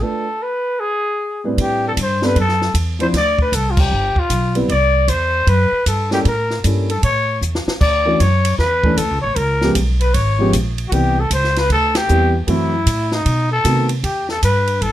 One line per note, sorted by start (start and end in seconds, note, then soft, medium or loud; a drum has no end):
0.01 0.24 A3 medium
0.01 0.24 D4 soft
0.01 0.25 F4 soft
0.01 0.44 A4 medium
0.01 0.25 B4 medium
0.42 0.81 B4 medium
0.80 1.44 G#4 medium
1.44 1.94 A2 medium
1.44 1.94 G3 medium
1.44 1.94 C4 medium
1.44 1.95 D4 medium
1.44 1.95 B4 medium
1.58 1.96 A2 medium
1.58 1.84 G4 medium
1.58 kick soft
1.58 ride medium
1.88 1.93 A4 medium
1.97 2.35 G2 medium
1.97 kick soft
1.97 hi-hat pedal soft
1.97 ride medium
2.02 2.27 C5 medium
2.22 2.34 G3 medium
2.22 2.35 B3 medium
2.22 2.35 C4 medium
2.22 2.35 D4 medium
2.22 2.35 A4 medium
2.22 2.38 B4 medium
2.22 snare soft
2.36 2.74 F#2 medium
2.36 2.74 A4 loud
2.36 kick soft
2.36 ride medium
2.49 snare soft
2.62 snare soft
2.74 3.12 E2 medium
2.74 kick soft
2.74 hi-hat pedal medium
2.74 ride medium
2.99 3.12 F3 medium
2.99 3.12 C4 medium
2.99 3.12 D4 medium
2.99 3.13 E4 medium
2.99 3.13 C5 medium
2.99 3.07 C5 medium
2.99 ride soft
3.13 3.51 D2 medium
3.13 3.39 D5 loud
3.13 kick soft
3.13 snare soft
3.13 ride medium
3.39 3.56 B4 medium
3.39 kick medium
3.52 3.90 C2 medium
3.52 3.72 A4 medium
3.52 kick soft
3.52 hi-hat pedal medium
3.52 ride medium
3.71 3.81 F4 medium
3.77 4.21 G4 medium
3.77 kick medium
3.77 crash medium
3.91 4.15 G1 medium
4.16 4.57 F4 medium
4.16 muted upright bass stroke soft
4.16 kick soft
4.30 4.68 B1 medium
4.30 kick soft
4.30 hi-hat pedal medium
4.30 ride medium
4.55 4.68 G3 medium
4.55 4.68 B3 medium
4.55 4.68 C4 medium
4.55 4.68 E4 medium
4.55 4.68 B4 medium
4.55 ride soft
4.68 5.07 C2 medium
4.68 5.11 D5 medium
4.68 kick soft
4.68 ride medium
5.08 5.46 E2 medium
5.08 5.50 C5 medium
5.08 kick soft
5.08 hi-hat pedal medium
5.08 ride medium
5.47 5.70 F#2 medium
5.47 5.87 B4 loud
5.47 kick soft
5.47 ride medium
5.72 muted upright bass stroke soft
5.86 6.24 G2 medium
5.86 6.10 A4 medium
5.86 kick soft
5.86 hi-hat pedal medium
5.86 ride medium
6.10 6.24 G3 medium
6.10 6.24 A#3 medium
6.10 6.24 C#4 medium
6.10 6.24 E4 medium
6.10 6.19 G4 medium
6.10 6.24 A4 medium
6.10 snare soft
6.25 6.63 A2 medium
6.25 6.63 A#4 medium
6.25 kick soft
6.25 ride medium
6.50 snare soft
6.63 7.02 G2 medium
6.63 6.86 G3 medium
6.63 6.87 A#3 medium
6.63 6.87 C#4 medium
6.63 6.87 E4 medium
6.63 6.87 A4 medium
6.63 kick soft
6.63 hi-hat pedal medium
6.63 ride medium
6.90 7.03 A4 medium
6.90 ride soft
7.03 7.41 A2 medium
7.03 7.40 C#5 medium
7.03 kick soft
7.03 ride medium
7.41 7.65 E2 medium
7.41 hi-hat pedal soft
7.55 snare medium
7.67 muted upright bass stroke soft
7.67 snare medium
7.81 8.19 D2 medium
7.81 8.22 D5 loud
7.81 kick medium
7.81 crash medium
8.05 8.18 E3 medium
8.05 8.18 A3 medium
8.05 8.19 C#4 medium
8.05 8.19 D4 medium
8.05 8.19 F#4 medium
8.20 8.58 F#2 medium
8.20 8.58 C#5 medium
8.20 kick soft
8.20 hi-hat pedal medium
8.20 ride medium
8.45 ride medium
8.58 8.96 E2 medium
8.58 8.99 B4 medium
8.58 kick soft
8.58 snare soft
8.84 8.97 E3 medium
8.84 8.97 A3 medium
8.84 8.97 C#4 medium
8.84 8.97 D4 medium
8.84 8.97 A4 medium
8.84 kick medium
8.97 9.11 D2 medium
8.97 9.21 A4 medium
8.97 kick soft
8.97 hi-hat pedal medium
8.97 ride medium
9.11 9.23 C#2 medium
9.22 9.35 A1 medium
9.22 9.37 C#5 medium
9.36 9.74 C#2 medium
9.36 9.75 A#4 medium
9.36 kick soft
9.36 ride medium
9.61 9.74 F3 medium
9.61 9.74 G#3 medium
9.61 9.75 B3 medium
9.61 9.75 C#4 medium
9.61 9.75 G4 medium
9.61 snare soft
9.75 10.13 B1 medium
9.75 kick soft
9.75 hi-hat pedal medium
9.75 ride medium
10.01 10.16 B4 medium
10.01 ride soft
10.14 10.52 G#1 medium
10.14 10.53 C#5 medium
10.14 kick soft
10.14 ride medium
10.39 10.52 F3 medium
10.39 10.52 G#3 medium
10.39 10.52 B3 medium
10.39 10.53 C#4 medium
10.39 10.53 G4 medium
10.53 10.91 A#1 medium
10.53 kick soft
10.53 hi-hat pedal medium
10.53 ride medium
10.78 ride soft
10.88 11.30 C2 medium
10.88 11.15 E3 medium
10.88 10.95 F#4 medium
10.88 kick soft
10.92 11.15 G3 medium
10.92 11.15 B3 medium
10.92 11.15 C4 medium
10.92 11.21 G4 medium
10.92 11.15 G4 medium
10.92 ride medium
11.20 11.32 A4 medium
11.30 11.69 C#2 medium
11.30 11.60 C5 loud
11.30 kick soft
11.30 hi-hat pedal medium
11.30 ride medium
11.44 snare soft
11.56 11.71 B4 loud
11.56 snare soft
11.56 ride soft
11.70 12.08 D2 medium
11.70 11.98 A4 loud
11.70 kick soft
11.70 ride medium
11.95 12.35 G4 medium
11.95 snare medium
11.95 ride medium
12.08 12.47 E2 medium
12.08 12.31 E3 medium
12.08 12.32 G3 medium
12.08 12.32 B3 medium
12.08 12.32 C4 medium
12.08 12.32 G4 medium
12.08 hi-hat pedal soft
12.47 12.86 F#2 medium
12.47 12.70 E3 medium
12.47 12.70 F#3 medium
12.47 12.70 A3 medium
12.47 12.71 C4 medium
12.47 13.15 E4 medium
12.47 12.71 F#4 medium
12.47 kick soft
12.47 ride medium
12.86 13.24 A2 medium
12.86 kick soft
12.86 hi-hat pedal medium
12.86 ride medium
13.12 13.51 D#4 medium
13.12 snare medium
13.26 13.64 B2 medium
13.26 kick soft
13.26 ride medium
13.52 13.88 A4 loud
13.64 14.03 C3 medium
13.64 13.87 D#3 medium
13.64 13.87 A3 medium
13.64 13.87 B3 medium
13.64 13.88 C4 medium
13.64 13.88 F#4 medium
13.64 kick soft
13.64 hi-hat pedal soft
13.64 ride medium
13.89 ride soft
14.04 14.41 E2 medium
14.04 14.27 G4 medium
14.04 kick soft
14.04 ride medium
14.29 14.43 A4 medium
14.29 snare soft
14.43 14.81 G2 medium
14.43 14.84 B4 medium
14.43 kick soft
14.43 hi-hat pedal medium
14.43 ride medium
14.67 ride soft
14.81 14.92 G1 medium
14.81 14.92 A4 loud
14.81 kick soft
14.81 ride medium